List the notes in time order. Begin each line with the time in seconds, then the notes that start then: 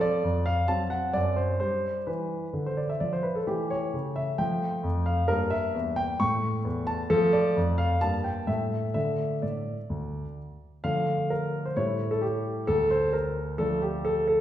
Already playing: F3 C4 A4
0.01 D5
0.24 F2
0.46 F5
0.68 F#3 C4 A5
0.90 F#5
1.13 F#2 D5
1.36 C5
1.60 G3 D4 C5
2.07 E3 B4
2.53 D3
2.66 C5
2.77 D5
2.89 E5
3.00 F3 D5
3.13 C5
3.23 B4
3.35 A4
3.47 E3 A3 G4
3.70 C#5
3.94 C#3
4.16 E5
4.38 F3 A3 G5
4.83 F2
5.06 F5
5.28 G2 A#3 A#4
5.50 E5
5.74 E2
5.96 G5
6.20 A2 A3 C#6
6.64 E2
6.87 A5
7.10 F3 A3 A4
7.33 D5
7.56 F2
7.78 F5
8.01 G2 A#3 A5
8.24 G5
8.47 A2 A3 E5
8.94 D3 A3 D4 E5
9.42 A2 D5
9.90 D2
10.84 D3 F3 A3 D4 F5
11.30 A#4
11.65 C5
11.76 A2 G3 A3 E4 C#5
12.11 A4
12.22 G4
12.67 D2 A4
12.91 C5
13.13 A#4
13.58 F3 A3 D4 A4
13.82 G4
14.05 A4
14.28 A4